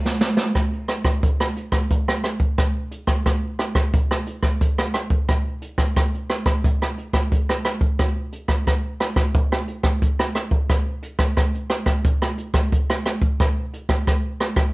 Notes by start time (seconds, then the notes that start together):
0.06 snare
0.21 snare
0.37 snare
0.55 kick, cross-stick, closed hi-hat
0.73 closed hi-hat
0.88 cross-stick, closed hi-hat
1.05 kick, cross-stick, closed hi-hat
1.23 kick, closed hi-hat
1.40 cross-stick
1.56 closed hi-hat
1.72 kick, cross-stick
1.90 kick, closed hi-hat
2.08 cross-stick
2.24 cross-stick, closed hi-hat
2.40 kick, closed hi-hat
2.58 kick, cross-stick, closed hi-hat
2.91 closed hi-hat
3.07 kick, cross-stick
3.26 kick, cross-stick, closed hi-hat
3.59 cross-stick, closed hi-hat
3.75 kick, cross-stick, closed hi-hat
3.94 kick, closed hi-hat
4.11 cross-stick
4.27 closed hi-hat
4.43 kick, cross-stick, closed hi-hat
4.61 kick, closed hi-hat
4.78 cross-stick
4.94 cross-stick, closed hi-hat
5.10 kick, closed hi-hat
5.29 kick, cross-stick, closed hi-hat
5.62 closed hi-hat
5.78 kick, cross-stick
5.96 kick, cross-stick, closed hi-hat
6.14 closed hi-hat
6.30 cross-stick, closed hi-hat
6.46 kick, cross-stick, closed hi-hat
6.64 kick, closed hi-hat
6.82 cross-stick
6.98 closed hi-hat
7.13 kick, cross-stick
7.32 kick, closed hi-hat
7.49 cross-stick
7.65 cross-stick, closed hi-hat
7.81 kick, closed hi-hat
7.99 kick, cross-stick, closed hi-hat
8.32 closed hi-hat
8.48 kick, cross-stick
8.67 kick, cross-stick, closed hi-hat
9.00 cross-stick, closed hi-hat
9.16 kick, cross-stick, closed hi-hat
9.34 kick, closed hi-hat
9.52 cross-stick
9.67 closed hi-hat
9.83 kick, cross-stick, closed hi-hat
10.02 kick, closed hi-hat
10.19 cross-stick
10.35 cross-stick, closed hi-hat
10.51 kick, closed hi-hat
10.70 kick, cross-stick, closed hi-hat
11.02 closed hi-hat
11.19 kick, cross-stick
11.37 kick, cross-stick, closed hi-hat
11.54 closed hi-hat
11.70 cross-stick, closed hi-hat
11.86 kick, cross-stick, closed hi-hat
12.04 kick, closed hi-hat
12.22 cross-stick
12.38 closed hi-hat
12.54 kick, cross-stick
12.72 kick, closed hi-hat
12.90 cross-stick
13.06 cross-stick, closed hi-hat
13.22 kick, closed hi-hat
13.40 kick, cross-stick, closed hi-hat
13.73 closed hi-hat
13.89 kick, cross-stick
14.07 kick, cross-stick, closed hi-hat
14.40 cross-stick, closed hi-hat
14.56 kick, cross-stick, closed hi-hat